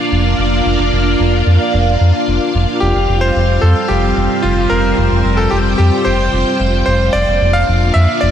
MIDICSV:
0, 0, Header, 1, 4, 480
1, 0, Start_track
1, 0, Tempo, 540541
1, 583, Time_signature, 4, 2, 24, 8
1, 7380, End_track
2, 0, Start_track
2, 0, Title_t, "Electric grand piano"
2, 0, Program_c, 0, 2
2, 2490, Note_on_c, 0, 67, 88
2, 2831, Note_off_c, 0, 67, 0
2, 2851, Note_on_c, 0, 72, 104
2, 3210, Note_on_c, 0, 69, 91
2, 3228, Note_off_c, 0, 72, 0
2, 3449, Note_on_c, 0, 67, 89
2, 3464, Note_off_c, 0, 69, 0
2, 3930, Note_on_c, 0, 65, 89
2, 3951, Note_off_c, 0, 67, 0
2, 4170, Note_on_c, 0, 70, 99
2, 4184, Note_off_c, 0, 65, 0
2, 4770, Note_on_c, 0, 69, 87
2, 4795, Note_off_c, 0, 70, 0
2, 4890, Note_on_c, 0, 67, 93
2, 4900, Note_off_c, 0, 69, 0
2, 4945, Note_off_c, 0, 67, 0
2, 5132, Note_on_c, 0, 67, 91
2, 5370, Note_on_c, 0, 72, 100
2, 5385, Note_off_c, 0, 67, 0
2, 6061, Note_off_c, 0, 72, 0
2, 6089, Note_on_c, 0, 72, 98
2, 6319, Note_off_c, 0, 72, 0
2, 6330, Note_on_c, 0, 74, 112
2, 6690, Note_on_c, 0, 77, 110
2, 6708, Note_off_c, 0, 74, 0
2, 7049, Note_on_c, 0, 76, 98
2, 7068, Note_off_c, 0, 77, 0
2, 7288, Note_on_c, 0, 74, 109
2, 7303, Note_off_c, 0, 76, 0
2, 7380, Note_off_c, 0, 74, 0
2, 7380, End_track
3, 0, Start_track
3, 0, Title_t, "String machine"
3, 0, Program_c, 1, 50
3, 0, Note_on_c, 1, 58, 79
3, 0, Note_on_c, 1, 62, 73
3, 0, Note_on_c, 1, 65, 77
3, 0, Note_on_c, 1, 74, 75
3, 0, Note_on_c, 1, 77, 87
3, 2468, Note_off_c, 1, 58, 0
3, 2468, Note_off_c, 1, 62, 0
3, 2468, Note_off_c, 1, 74, 0
3, 2468, Note_off_c, 1, 77, 0
3, 2503, Note_on_c, 1, 60, 75
3, 2503, Note_on_c, 1, 72, 74
3, 2503, Note_on_c, 1, 77, 93
3, 2504, Note_on_c, 1, 55, 85
3, 4404, Note_off_c, 1, 77, 0
3, 4422, Note_on_c, 1, 79, 90
3, 6308, Note_off_c, 1, 55, 0
3, 6308, Note_off_c, 1, 60, 0
3, 6308, Note_off_c, 1, 65, 0
3, 6308, Note_off_c, 1, 72, 0
3, 6324, Note_off_c, 1, 79, 0
3, 6344, Note_on_c, 1, 58, 80
3, 6344, Note_on_c, 1, 62, 78
3, 6344, Note_on_c, 1, 65, 74
3, 6344, Note_on_c, 1, 74, 77
3, 6344, Note_on_c, 1, 77, 89
3, 7380, Note_off_c, 1, 58, 0
3, 7380, Note_off_c, 1, 62, 0
3, 7380, Note_off_c, 1, 65, 0
3, 7380, Note_off_c, 1, 74, 0
3, 7380, Note_off_c, 1, 77, 0
3, 7380, End_track
4, 0, Start_track
4, 0, Title_t, "Analog synth bass"
4, 0, Program_c, 2, 38
4, 103, Note_on_c, 2, 29, 103
4, 304, Note_off_c, 2, 29, 0
4, 343, Note_on_c, 2, 29, 91
4, 544, Note_off_c, 2, 29, 0
4, 583, Note_on_c, 2, 29, 99
4, 684, Note_off_c, 2, 29, 0
4, 703, Note_on_c, 2, 29, 90
4, 803, Note_off_c, 2, 29, 0
4, 823, Note_on_c, 2, 29, 101
4, 1024, Note_off_c, 2, 29, 0
4, 1063, Note_on_c, 2, 29, 85
4, 1264, Note_off_c, 2, 29, 0
4, 1303, Note_on_c, 2, 41, 81
4, 1404, Note_off_c, 2, 41, 0
4, 1544, Note_on_c, 2, 29, 94
4, 1744, Note_off_c, 2, 29, 0
4, 1784, Note_on_c, 2, 41, 90
4, 1884, Note_off_c, 2, 41, 0
4, 2023, Note_on_c, 2, 29, 86
4, 2123, Note_off_c, 2, 29, 0
4, 2262, Note_on_c, 2, 29, 97
4, 2363, Note_off_c, 2, 29, 0
4, 2503, Note_on_c, 2, 29, 100
4, 2603, Note_off_c, 2, 29, 0
4, 2623, Note_on_c, 2, 29, 90
4, 2723, Note_off_c, 2, 29, 0
4, 2743, Note_on_c, 2, 29, 96
4, 2944, Note_off_c, 2, 29, 0
4, 2983, Note_on_c, 2, 29, 82
4, 3183, Note_off_c, 2, 29, 0
4, 3222, Note_on_c, 2, 41, 86
4, 3323, Note_off_c, 2, 41, 0
4, 3462, Note_on_c, 2, 29, 98
4, 3663, Note_off_c, 2, 29, 0
4, 3702, Note_on_c, 2, 29, 98
4, 3803, Note_off_c, 2, 29, 0
4, 3943, Note_on_c, 2, 29, 101
4, 4144, Note_off_c, 2, 29, 0
4, 4182, Note_on_c, 2, 29, 91
4, 4383, Note_off_c, 2, 29, 0
4, 4423, Note_on_c, 2, 29, 97
4, 4523, Note_off_c, 2, 29, 0
4, 4542, Note_on_c, 2, 29, 86
4, 4643, Note_off_c, 2, 29, 0
4, 4662, Note_on_c, 2, 29, 100
4, 4863, Note_off_c, 2, 29, 0
4, 4903, Note_on_c, 2, 29, 81
4, 5104, Note_off_c, 2, 29, 0
4, 5144, Note_on_c, 2, 41, 80
4, 5244, Note_off_c, 2, 41, 0
4, 5383, Note_on_c, 2, 29, 101
4, 5584, Note_off_c, 2, 29, 0
4, 5623, Note_on_c, 2, 29, 101
4, 5723, Note_off_c, 2, 29, 0
4, 5863, Note_on_c, 2, 29, 100
4, 6064, Note_off_c, 2, 29, 0
4, 6103, Note_on_c, 2, 29, 88
4, 6304, Note_off_c, 2, 29, 0
4, 6342, Note_on_c, 2, 29, 99
4, 6443, Note_off_c, 2, 29, 0
4, 6463, Note_on_c, 2, 29, 92
4, 6563, Note_off_c, 2, 29, 0
4, 6582, Note_on_c, 2, 29, 100
4, 6783, Note_off_c, 2, 29, 0
4, 6824, Note_on_c, 2, 29, 86
4, 7024, Note_off_c, 2, 29, 0
4, 7064, Note_on_c, 2, 41, 85
4, 7164, Note_off_c, 2, 41, 0
4, 7304, Note_on_c, 2, 29, 105
4, 7380, Note_off_c, 2, 29, 0
4, 7380, End_track
0, 0, End_of_file